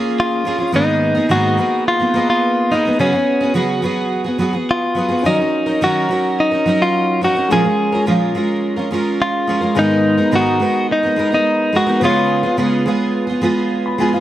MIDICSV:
0, 0, Header, 1, 4, 480
1, 0, Start_track
1, 0, Tempo, 563910
1, 633, Time_signature, 4, 2, 24, 8
1, 12088, End_track
2, 0, Start_track
2, 0, Title_t, "Grand piano"
2, 0, Program_c, 0, 0
2, 4448, Note_on_c, 0, 61, 53
2, 4466, Note_on_c, 0, 54, 48
2, 4485, Note_on_c, 0, 74, 45
2, 4532, Note_off_c, 0, 74, 0
2, 4538, Note_on_c, 0, 75, 62
2, 4631, Control_c, 0, 64, 127
2, 6344, Note_off_c, 0, 61, 0
2, 6353, Note_off_c, 0, 54, 0
2, 6370, Note_on_c, 0, 56, 56
2, 6386, Note_on_c, 0, 61, 54
2, 6389, Note_off_c, 0, 75, 0
2, 6399, Control_c, 0, 64, 0
2, 6404, Note_on_c, 0, 70, 56
2, 6547, Control_c, 0, 64, 127
2, 8265, Note_off_c, 0, 56, 0
2, 8274, Note_off_c, 0, 61, 0
2, 8283, Note_off_c, 0, 70, 0
2, 8295, Note_on_c, 0, 56, 64
2, 8312, Note_on_c, 0, 59, 51
2, 8319, Control_c, 0, 64, 0
2, 8330, Note_on_c, 0, 70, 62
2, 8461, Control_c, 0, 64, 127
2, 10189, Note_off_c, 0, 56, 0
2, 10198, Note_off_c, 0, 59, 0
2, 10207, Note_off_c, 0, 70, 0
2, 10212, Note_on_c, 0, 59, 58
2, 10231, Note_on_c, 0, 65, 49
2, 10243, Control_c, 0, 64, 0
2, 10247, Note_on_c, 0, 73, 66
2, 10410, Control_c, 0, 64, 127
2, 11796, Note_on_c, 0, 83, 52
2, 11908, Note_off_c, 0, 83, 0
2, 11919, Note_on_c, 0, 80, 58
2, 12029, Note_off_c, 0, 80, 0
2, 12035, Note_on_c, 0, 77, 54
2, 12088, Note_off_c, 0, 59, 0
2, 12088, Note_off_c, 0, 65, 0
2, 12088, Note_off_c, 0, 73, 0
2, 12088, Note_off_c, 0, 77, 0
2, 12088, End_track
3, 0, Start_track
3, 0, Title_t, "Clean electric guitar"
3, 0, Program_c, 1, 27
3, 169, Note_on_c, 1, 65, 74
3, 608, Note_off_c, 1, 65, 0
3, 646, Note_on_c, 1, 63, 85
3, 1118, Note_on_c, 1, 66, 91
3, 1133, Note_off_c, 1, 63, 0
3, 1561, Note_off_c, 1, 66, 0
3, 1601, Note_on_c, 1, 65, 86
3, 1947, Note_off_c, 1, 65, 0
3, 1957, Note_on_c, 1, 65, 83
3, 2312, Note_on_c, 1, 63, 66
3, 2324, Note_off_c, 1, 65, 0
3, 2534, Note_off_c, 1, 63, 0
3, 2558, Note_on_c, 1, 61, 71
3, 3000, Note_off_c, 1, 61, 0
3, 4007, Note_on_c, 1, 65, 70
3, 4480, Note_on_c, 1, 63, 74
3, 4492, Note_off_c, 1, 65, 0
3, 4968, Note_off_c, 1, 63, 0
3, 4969, Note_on_c, 1, 66, 79
3, 5449, Note_on_c, 1, 63, 79
3, 5453, Note_off_c, 1, 66, 0
3, 5806, Note_on_c, 1, 65, 88
3, 5809, Note_off_c, 1, 63, 0
3, 6132, Note_off_c, 1, 65, 0
3, 6167, Note_on_c, 1, 66, 73
3, 6402, Note_off_c, 1, 66, 0
3, 6406, Note_on_c, 1, 68, 91
3, 6844, Note_off_c, 1, 68, 0
3, 7845, Note_on_c, 1, 65, 72
3, 8331, Note_off_c, 1, 65, 0
3, 8332, Note_on_c, 1, 63, 94
3, 8815, Note_off_c, 1, 63, 0
3, 8815, Note_on_c, 1, 66, 93
3, 9249, Note_off_c, 1, 66, 0
3, 9298, Note_on_c, 1, 63, 82
3, 9646, Note_off_c, 1, 63, 0
3, 9656, Note_on_c, 1, 63, 79
3, 10014, Note_off_c, 1, 63, 0
3, 10014, Note_on_c, 1, 66, 78
3, 10226, Note_off_c, 1, 66, 0
3, 10258, Note_on_c, 1, 65, 83
3, 10692, Note_off_c, 1, 65, 0
3, 12088, End_track
4, 0, Start_track
4, 0, Title_t, "Twelve-string acoustic guitar"
4, 0, Program_c, 2, 25
4, 0, Note_on_c, 2, 58, 63
4, 0, Note_on_c, 2, 61, 69
4, 0, Note_on_c, 2, 65, 64
4, 0, Note_on_c, 2, 68, 75
4, 380, Note_off_c, 2, 58, 0
4, 383, Note_on_c, 2, 58, 53
4, 385, Note_off_c, 2, 61, 0
4, 388, Note_off_c, 2, 65, 0
4, 395, Note_on_c, 2, 61, 56
4, 399, Note_on_c, 2, 65, 61
4, 403, Note_off_c, 2, 68, 0
4, 407, Note_on_c, 2, 68, 58
4, 486, Note_off_c, 2, 68, 0
4, 496, Note_on_c, 2, 68, 46
4, 500, Note_off_c, 2, 65, 0
4, 508, Note_off_c, 2, 58, 0
4, 510, Note_on_c, 2, 65, 45
4, 514, Note_off_c, 2, 61, 0
4, 526, Note_on_c, 2, 61, 41
4, 616, Note_on_c, 2, 44, 65
4, 622, Note_on_c, 2, 51, 64
4, 624, Note_off_c, 2, 68, 0
4, 625, Note_off_c, 2, 61, 0
4, 625, Note_on_c, 2, 58, 59
4, 628, Note_off_c, 2, 65, 0
4, 628, Note_on_c, 2, 59, 79
4, 631, Note_on_c, 2, 63, 69
4, 639, Note_on_c, 2, 68, 62
4, 966, Note_off_c, 2, 68, 0
4, 976, Note_on_c, 2, 68, 51
4, 980, Note_off_c, 2, 63, 0
4, 984, Note_off_c, 2, 44, 0
4, 987, Note_off_c, 2, 51, 0
4, 987, Note_off_c, 2, 59, 0
4, 988, Note_off_c, 2, 58, 0
4, 991, Note_on_c, 2, 63, 41
4, 997, Note_on_c, 2, 59, 40
4, 1003, Note_on_c, 2, 58, 40
4, 1093, Note_off_c, 2, 58, 0
4, 1097, Note_on_c, 2, 44, 54
4, 1099, Note_off_c, 2, 59, 0
4, 1101, Note_on_c, 2, 51, 61
4, 1103, Note_off_c, 2, 63, 0
4, 1103, Note_on_c, 2, 58, 62
4, 1104, Note_off_c, 2, 68, 0
4, 1109, Note_on_c, 2, 59, 72
4, 1114, Note_on_c, 2, 63, 77
4, 1115, Note_on_c, 2, 68, 84
4, 1329, Note_off_c, 2, 58, 0
4, 1339, Note_off_c, 2, 59, 0
4, 1339, Note_on_c, 2, 58, 49
4, 1344, Note_off_c, 2, 44, 0
4, 1346, Note_off_c, 2, 51, 0
4, 1349, Note_off_c, 2, 63, 0
4, 1349, Note_on_c, 2, 59, 56
4, 1353, Note_off_c, 2, 68, 0
4, 1359, Note_on_c, 2, 63, 57
4, 1365, Note_on_c, 2, 68, 53
4, 1689, Note_off_c, 2, 68, 0
4, 1696, Note_off_c, 2, 63, 0
4, 1699, Note_on_c, 2, 68, 36
4, 1705, Note_off_c, 2, 58, 0
4, 1706, Note_off_c, 2, 59, 0
4, 1707, Note_on_c, 2, 63, 34
4, 1717, Note_on_c, 2, 59, 38
4, 1722, Note_on_c, 2, 58, 30
4, 1810, Note_off_c, 2, 58, 0
4, 1820, Note_on_c, 2, 58, 60
4, 1822, Note_off_c, 2, 59, 0
4, 1825, Note_off_c, 2, 68, 0
4, 1829, Note_off_c, 2, 63, 0
4, 1832, Note_on_c, 2, 59, 59
4, 1838, Note_on_c, 2, 63, 63
4, 1847, Note_on_c, 2, 68, 60
4, 2299, Note_off_c, 2, 58, 0
4, 2309, Note_on_c, 2, 58, 59
4, 2314, Note_off_c, 2, 63, 0
4, 2320, Note_off_c, 2, 59, 0
4, 2323, Note_on_c, 2, 59, 61
4, 2330, Note_on_c, 2, 63, 58
4, 2333, Note_off_c, 2, 68, 0
4, 2337, Note_on_c, 2, 68, 57
4, 2416, Note_off_c, 2, 68, 0
4, 2426, Note_on_c, 2, 68, 46
4, 2430, Note_off_c, 2, 58, 0
4, 2430, Note_off_c, 2, 63, 0
4, 2437, Note_off_c, 2, 59, 0
4, 2440, Note_on_c, 2, 63, 42
4, 2447, Note_on_c, 2, 59, 43
4, 2456, Note_on_c, 2, 58, 37
4, 2544, Note_off_c, 2, 58, 0
4, 2544, Note_off_c, 2, 59, 0
4, 2546, Note_on_c, 2, 49, 66
4, 2548, Note_off_c, 2, 68, 0
4, 2548, Note_on_c, 2, 54, 61
4, 2554, Note_on_c, 2, 59, 63
4, 2555, Note_off_c, 2, 63, 0
4, 2561, Note_on_c, 2, 66, 70
4, 2561, Note_on_c, 2, 68, 66
4, 2649, Note_off_c, 2, 68, 0
4, 2659, Note_on_c, 2, 68, 42
4, 2666, Note_off_c, 2, 66, 0
4, 2668, Note_off_c, 2, 49, 0
4, 2669, Note_off_c, 2, 54, 0
4, 2672, Note_off_c, 2, 59, 0
4, 2677, Note_on_c, 2, 66, 37
4, 2687, Note_on_c, 2, 59, 35
4, 2889, Note_off_c, 2, 68, 0
4, 2899, Note_on_c, 2, 68, 46
4, 2902, Note_off_c, 2, 66, 0
4, 2912, Note_on_c, 2, 66, 43
4, 2915, Note_off_c, 2, 59, 0
4, 2926, Note_on_c, 2, 59, 41
4, 3011, Note_off_c, 2, 59, 0
4, 3013, Note_on_c, 2, 49, 56
4, 3016, Note_on_c, 2, 54, 68
4, 3017, Note_off_c, 2, 66, 0
4, 3021, Note_off_c, 2, 68, 0
4, 3022, Note_on_c, 2, 59, 62
4, 3027, Note_on_c, 2, 66, 74
4, 3031, Note_on_c, 2, 68, 64
4, 3243, Note_off_c, 2, 54, 0
4, 3253, Note_on_c, 2, 54, 62
4, 3254, Note_off_c, 2, 59, 0
4, 3261, Note_off_c, 2, 49, 0
4, 3262, Note_off_c, 2, 66, 0
4, 3265, Note_on_c, 2, 59, 62
4, 3270, Note_off_c, 2, 68, 0
4, 3272, Note_on_c, 2, 66, 60
4, 3280, Note_on_c, 2, 68, 55
4, 3602, Note_off_c, 2, 68, 0
4, 3612, Note_on_c, 2, 68, 43
4, 3615, Note_off_c, 2, 66, 0
4, 3621, Note_off_c, 2, 54, 0
4, 3625, Note_on_c, 2, 66, 41
4, 3627, Note_off_c, 2, 59, 0
4, 3643, Note_on_c, 2, 59, 41
4, 3728, Note_off_c, 2, 59, 0
4, 3732, Note_on_c, 2, 54, 57
4, 3738, Note_on_c, 2, 59, 64
4, 3739, Note_off_c, 2, 66, 0
4, 3740, Note_off_c, 2, 68, 0
4, 3749, Note_on_c, 2, 66, 63
4, 3759, Note_on_c, 2, 68, 59
4, 3845, Note_off_c, 2, 68, 0
4, 3856, Note_on_c, 2, 68, 41
4, 3858, Note_off_c, 2, 66, 0
4, 3860, Note_off_c, 2, 54, 0
4, 3863, Note_off_c, 2, 59, 0
4, 3868, Note_on_c, 2, 66, 36
4, 3882, Note_on_c, 2, 59, 31
4, 4212, Note_on_c, 2, 54, 50
4, 4214, Note_off_c, 2, 59, 0
4, 4219, Note_off_c, 2, 66, 0
4, 4222, Note_off_c, 2, 68, 0
4, 4224, Note_on_c, 2, 59, 53
4, 4229, Note_on_c, 2, 66, 49
4, 4241, Note_on_c, 2, 68, 56
4, 4318, Note_off_c, 2, 68, 0
4, 4329, Note_on_c, 2, 68, 50
4, 4336, Note_off_c, 2, 66, 0
4, 4340, Note_off_c, 2, 54, 0
4, 4346, Note_off_c, 2, 59, 0
4, 4346, Note_on_c, 2, 66, 38
4, 4355, Note_on_c, 2, 59, 37
4, 4458, Note_on_c, 2, 51, 54
4, 4459, Note_off_c, 2, 68, 0
4, 4467, Note_off_c, 2, 66, 0
4, 4468, Note_on_c, 2, 54, 61
4, 4469, Note_off_c, 2, 59, 0
4, 4472, Note_on_c, 2, 61, 67
4, 4477, Note_on_c, 2, 63, 65
4, 4479, Note_on_c, 2, 70, 70
4, 4574, Note_off_c, 2, 70, 0
4, 4583, Note_off_c, 2, 51, 0
4, 4584, Note_on_c, 2, 70, 39
4, 4588, Note_off_c, 2, 54, 0
4, 4588, Note_off_c, 2, 63, 0
4, 4590, Note_off_c, 2, 61, 0
4, 4598, Note_on_c, 2, 63, 31
4, 4610, Note_on_c, 2, 61, 37
4, 4809, Note_off_c, 2, 70, 0
4, 4819, Note_on_c, 2, 70, 45
4, 4821, Note_off_c, 2, 63, 0
4, 4832, Note_on_c, 2, 63, 36
4, 4837, Note_off_c, 2, 61, 0
4, 4847, Note_on_c, 2, 61, 38
4, 4944, Note_off_c, 2, 61, 0
4, 4944, Note_off_c, 2, 70, 0
4, 4946, Note_on_c, 2, 51, 61
4, 4950, Note_off_c, 2, 63, 0
4, 4952, Note_on_c, 2, 54, 70
4, 4954, Note_on_c, 2, 61, 72
4, 4961, Note_on_c, 2, 63, 74
4, 4963, Note_on_c, 2, 70, 69
4, 5172, Note_off_c, 2, 54, 0
4, 5182, Note_on_c, 2, 54, 46
4, 5186, Note_off_c, 2, 61, 0
4, 5187, Note_off_c, 2, 51, 0
4, 5194, Note_off_c, 2, 63, 0
4, 5195, Note_off_c, 2, 70, 0
4, 5196, Note_on_c, 2, 61, 56
4, 5203, Note_on_c, 2, 63, 53
4, 5210, Note_on_c, 2, 70, 56
4, 5534, Note_off_c, 2, 70, 0
4, 5544, Note_on_c, 2, 70, 40
4, 5545, Note_off_c, 2, 54, 0
4, 5550, Note_off_c, 2, 63, 0
4, 5552, Note_off_c, 2, 61, 0
4, 5560, Note_on_c, 2, 63, 36
4, 5574, Note_on_c, 2, 61, 35
4, 5666, Note_off_c, 2, 70, 0
4, 5666, Note_on_c, 2, 54, 56
4, 5667, Note_off_c, 2, 61, 0
4, 5672, Note_off_c, 2, 63, 0
4, 5677, Note_on_c, 2, 61, 50
4, 5682, Note_on_c, 2, 63, 58
4, 5692, Note_on_c, 2, 70, 67
4, 6131, Note_off_c, 2, 54, 0
4, 6141, Note_on_c, 2, 54, 47
4, 6147, Note_off_c, 2, 61, 0
4, 6150, Note_off_c, 2, 63, 0
4, 6151, Note_on_c, 2, 61, 58
4, 6160, Note_on_c, 2, 63, 57
4, 6167, Note_off_c, 2, 70, 0
4, 6170, Note_on_c, 2, 70, 56
4, 6245, Note_off_c, 2, 70, 0
4, 6255, Note_on_c, 2, 70, 46
4, 6258, Note_off_c, 2, 63, 0
4, 6264, Note_off_c, 2, 54, 0
4, 6269, Note_on_c, 2, 63, 45
4, 6270, Note_off_c, 2, 61, 0
4, 6285, Note_on_c, 2, 61, 34
4, 6381, Note_off_c, 2, 70, 0
4, 6387, Note_on_c, 2, 46, 60
4, 6388, Note_off_c, 2, 63, 0
4, 6390, Note_off_c, 2, 61, 0
4, 6391, Note_on_c, 2, 53, 65
4, 6394, Note_on_c, 2, 56, 76
4, 6400, Note_on_c, 2, 61, 65
4, 6403, Note_on_c, 2, 65, 67
4, 6409, Note_on_c, 2, 70, 70
4, 6493, Note_off_c, 2, 70, 0
4, 6503, Note_off_c, 2, 65, 0
4, 6504, Note_on_c, 2, 70, 41
4, 6508, Note_off_c, 2, 46, 0
4, 6510, Note_off_c, 2, 53, 0
4, 6511, Note_off_c, 2, 56, 0
4, 6511, Note_off_c, 2, 61, 0
4, 6513, Note_on_c, 2, 65, 39
4, 6521, Note_on_c, 2, 61, 33
4, 6529, Note_on_c, 2, 56, 32
4, 6733, Note_off_c, 2, 70, 0
4, 6744, Note_on_c, 2, 70, 51
4, 6747, Note_off_c, 2, 65, 0
4, 6755, Note_off_c, 2, 61, 0
4, 6757, Note_on_c, 2, 65, 40
4, 6759, Note_off_c, 2, 56, 0
4, 6764, Note_on_c, 2, 61, 44
4, 6774, Note_on_c, 2, 56, 39
4, 6861, Note_off_c, 2, 56, 0
4, 6862, Note_on_c, 2, 46, 58
4, 6863, Note_off_c, 2, 61, 0
4, 6866, Note_off_c, 2, 70, 0
4, 6867, Note_off_c, 2, 65, 0
4, 6867, Note_on_c, 2, 53, 68
4, 6871, Note_on_c, 2, 56, 69
4, 6873, Note_on_c, 2, 61, 67
4, 6877, Note_on_c, 2, 65, 68
4, 6879, Note_on_c, 2, 70, 67
4, 7095, Note_off_c, 2, 56, 0
4, 7102, Note_off_c, 2, 61, 0
4, 7105, Note_off_c, 2, 46, 0
4, 7105, Note_on_c, 2, 56, 67
4, 7108, Note_off_c, 2, 53, 0
4, 7113, Note_off_c, 2, 65, 0
4, 7113, Note_on_c, 2, 61, 62
4, 7114, Note_off_c, 2, 70, 0
4, 7123, Note_on_c, 2, 65, 57
4, 7129, Note_on_c, 2, 70, 62
4, 7449, Note_off_c, 2, 70, 0
4, 7458, Note_off_c, 2, 65, 0
4, 7460, Note_on_c, 2, 70, 47
4, 7467, Note_off_c, 2, 56, 0
4, 7469, Note_on_c, 2, 65, 44
4, 7471, Note_off_c, 2, 61, 0
4, 7482, Note_on_c, 2, 61, 42
4, 7487, Note_on_c, 2, 56, 39
4, 7572, Note_off_c, 2, 56, 0
4, 7582, Note_off_c, 2, 61, 0
4, 7582, Note_on_c, 2, 56, 62
4, 7584, Note_off_c, 2, 70, 0
4, 7589, Note_off_c, 2, 65, 0
4, 7592, Note_on_c, 2, 61, 60
4, 7603, Note_on_c, 2, 65, 63
4, 7609, Note_on_c, 2, 70, 68
4, 8060, Note_off_c, 2, 56, 0
4, 8063, Note_on_c, 2, 56, 49
4, 8066, Note_off_c, 2, 61, 0
4, 8071, Note_off_c, 2, 65, 0
4, 8076, Note_on_c, 2, 61, 56
4, 8081, Note_on_c, 2, 65, 64
4, 8089, Note_off_c, 2, 70, 0
4, 8092, Note_on_c, 2, 70, 59
4, 8168, Note_off_c, 2, 70, 0
4, 8178, Note_on_c, 2, 70, 49
4, 8179, Note_off_c, 2, 65, 0
4, 8186, Note_off_c, 2, 56, 0
4, 8188, Note_off_c, 2, 61, 0
4, 8189, Note_on_c, 2, 65, 44
4, 8198, Note_on_c, 2, 61, 44
4, 8207, Note_on_c, 2, 56, 39
4, 8297, Note_on_c, 2, 44, 63
4, 8298, Note_off_c, 2, 56, 0
4, 8303, Note_on_c, 2, 51, 63
4, 8304, Note_off_c, 2, 70, 0
4, 8305, Note_off_c, 2, 61, 0
4, 8308, Note_off_c, 2, 65, 0
4, 8308, Note_on_c, 2, 56, 72
4, 8309, Note_on_c, 2, 59, 66
4, 8312, Note_on_c, 2, 63, 75
4, 8318, Note_on_c, 2, 70, 60
4, 8651, Note_off_c, 2, 70, 0
4, 8657, Note_off_c, 2, 63, 0
4, 8661, Note_on_c, 2, 70, 46
4, 8663, Note_off_c, 2, 44, 0
4, 8666, Note_off_c, 2, 51, 0
4, 8668, Note_on_c, 2, 63, 41
4, 8669, Note_off_c, 2, 56, 0
4, 8669, Note_off_c, 2, 59, 0
4, 8680, Note_on_c, 2, 59, 45
4, 8687, Note_on_c, 2, 56, 33
4, 8775, Note_off_c, 2, 56, 0
4, 8779, Note_on_c, 2, 44, 59
4, 8781, Note_off_c, 2, 59, 0
4, 8783, Note_off_c, 2, 63, 0
4, 8784, Note_on_c, 2, 51, 66
4, 8785, Note_off_c, 2, 70, 0
4, 8786, Note_on_c, 2, 56, 76
4, 8791, Note_on_c, 2, 59, 62
4, 8793, Note_on_c, 2, 63, 69
4, 8798, Note_on_c, 2, 70, 68
4, 9010, Note_off_c, 2, 56, 0
4, 9020, Note_on_c, 2, 56, 52
4, 9023, Note_off_c, 2, 59, 0
4, 9024, Note_off_c, 2, 44, 0
4, 9027, Note_off_c, 2, 51, 0
4, 9028, Note_off_c, 2, 63, 0
4, 9033, Note_on_c, 2, 59, 50
4, 9034, Note_off_c, 2, 70, 0
4, 9038, Note_on_c, 2, 63, 65
4, 9046, Note_on_c, 2, 70, 61
4, 9378, Note_off_c, 2, 70, 0
4, 9385, Note_off_c, 2, 56, 0
4, 9388, Note_on_c, 2, 70, 46
4, 9391, Note_off_c, 2, 59, 0
4, 9391, Note_off_c, 2, 63, 0
4, 9401, Note_on_c, 2, 63, 36
4, 9408, Note_on_c, 2, 59, 31
4, 9416, Note_on_c, 2, 56, 38
4, 9492, Note_off_c, 2, 56, 0
4, 9502, Note_off_c, 2, 59, 0
4, 9502, Note_on_c, 2, 56, 53
4, 9509, Note_off_c, 2, 70, 0
4, 9512, Note_on_c, 2, 59, 59
4, 9513, Note_off_c, 2, 63, 0
4, 9524, Note_on_c, 2, 63, 56
4, 9530, Note_on_c, 2, 70, 68
4, 9611, Note_off_c, 2, 70, 0
4, 9621, Note_on_c, 2, 70, 40
4, 9624, Note_off_c, 2, 63, 0
4, 9626, Note_off_c, 2, 56, 0
4, 9628, Note_off_c, 2, 59, 0
4, 9635, Note_on_c, 2, 63, 43
4, 9638, Note_on_c, 2, 59, 35
4, 9647, Note_on_c, 2, 56, 36
4, 9970, Note_off_c, 2, 56, 0
4, 9980, Note_on_c, 2, 56, 53
4, 9982, Note_off_c, 2, 59, 0
4, 9986, Note_off_c, 2, 70, 0
4, 9991, Note_off_c, 2, 63, 0
4, 9992, Note_on_c, 2, 59, 55
4, 10001, Note_on_c, 2, 63, 52
4, 10008, Note_on_c, 2, 70, 67
4, 10089, Note_off_c, 2, 70, 0
4, 10099, Note_on_c, 2, 70, 51
4, 10102, Note_off_c, 2, 63, 0
4, 10105, Note_off_c, 2, 56, 0
4, 10111, Note_off_c, 2, 59, 0
4, 10113, Note_on_c, 2, 63, 47
4, 10120, Note_on_c, 2, 59, 41
4, 10125, Note_on_c, 2, 56, 41
4, 10221, Note_off_c, 2, 56, 0
4, 10223, Note_on_c, 2, 49, 69
4, 10225, Note_off_c, 2, 70, 0
4, 10227, Note_off_c, 2, 59, 0
4, 10231, Note_off_c, 2, 63, 0
4, 10231, Note_on_c, 2, 56, 60
4, 10238, Note_on_c, 2, 59, 68
4, 10241, Note_on_c, 2, 65, 67
4, 10247, Note_on_c, 2, 68, 80
4, 10570, Note_off_c, 2, 68, 0
4, 10580, Note_on_c, 2, 68, 50
4, 10584, Note_off_c, 2, 65, 0
4, 10587, Note_off_c, 2, 49, 0
4, 10591, Note_off_c, 2, 56, 0
4, 10594, Note_off_c, 2, 59, 0
4, 10595, Note_on_c, 2, 65, 41
4, 10607, Note_on_c, 2, 59, 38
4, 10697, Note_off_c, 2, 59, 0
4, 10701, Note_on_c, 2, 49, 60
4, 10704, Note_off_c, 2, 65, 0
4, 10705, Note_off_c, 2, 68, 0
4, 10707, Note_on_c, 2, 56, 65
4, 10707, Note_on_c, 2, 59, 61
4, 10715, Note_on_c, 2, 65, 73
4, 10720, Note_on_c, 2, 68, 72
4, 10932, Note_off_c, 2, 56, 0
4, 10943, Note_on_c, 2, 56, 56
4, 10944, Note_off_c, 2, 59, 0
4, 10946, Note_off_c, 2, 49, 0
4, 10950, Note_off_c, 2, 65, 0
4, 10954, Note_on_c, 2, 59, 59
4, 10955, Note_off_c, 2, 68, 0
4, 10960, Note_on_c, 2, 65, 67
4, 10967, Note_on_c, 2, 68, 65
4, 11284, Note_off_c, 2, 68, 0
4, 11294, Note_on_c, 2, 68, 43
4, 11306, Note_off_c, 2, 65, 0
4, 11307, Note_off_c, 2, 56, 0
4, 11313, Note_off_c, 2, 59, 0
4, 11316, Note_on_c, 2, 65, 41
4, 11327, Note_on_c, 2, 59, 38
4, 11417, Note_off_c, 2, 59, 0
4, 11418, Note_on_c, 2, 56, 67
4, 11423, Note_off_c, 2, 68, 0
4, 11424, Note_off_c, 2, 65, 0
4, 11427, Note_on_c, 2, 59, 63
4, 11435, Note_on_c, 2, 65, 65
4, 11444, Note_on_c, 2, 68, 68
4, 11891, Note_off_c, 2, 56, 0
4, 11902, Note_on_c, 2, 56, 62
4, 11904, Note_off_c, 2, 59, 0
4, 11913, Note_off_c, 2, 65, 0
4, 11914, Note_on_c, 2, 59, 66
4, 11918, Note_off_c, 2, 68, 0
4, 11925, Note_on_c, 2, 65, 64
4, 11930, Note_on_c, 2, 68, 65
4, 12016, Note_off_c, 2, 68, 0
4, 12027, Note_off_c, 2, 56, 0
4, 12027, Note_on_c, 2, 68, 49
4, 12028, Note_off_c, 2, 65, 0
4, 12033, Note_off_c, 2, 59, 0
4, 12038, Note_on_c, 2, 65, 49
4, 12054, Note_on_c, 2, 59, 43
4, 12088, Note_off_c, 2, 59, 0
4, 12088, Note_off_c, 2, 65, 0
4, 12088, Note_off_c, 2, 68, 0
4, 12088, End_track
0, 0, End_of_file